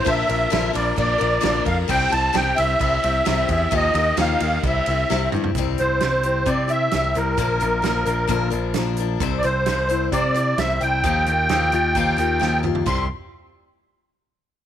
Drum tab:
CC |----------------|x---------------|----------------|----------------|
RD |x-x-x-x-x-x-x-x-|--x-x-x-x-x-x-x-|x-x-x-x-x-x-----|----------------|
HH |----------------|----------------|----------------|x-x-x-x-x-x-x-x-|
SD |----o-------o---|----o-------o---|----o-------o---|----o-------o---|
T2 |----------------|----------------|--------------o-|----------------|
FT |----------------|----------------|---------------o|----------------|
BD |o-------o-----o-|o-------o-----o-|o-------o-------|o-------o-------|

CC |----------------|----------------|----------------|x---------------|
RD |----------------|----------------|----------------|----------------|
HH |x-x-x-x-x-x-x-x-|x-x-x-x-x-x-x-x-|x-x-x-x-x-x-----|----------------|
SD |----o-------o---|----o-------o---|----o-------o---|----------------|
T2 |----------------|----------------|--------------o-|----------------|
FT |----------------|----------------|---------------o|----------------|
BD |o-------o-------|o-------o-------|o-------o-------|o---------------|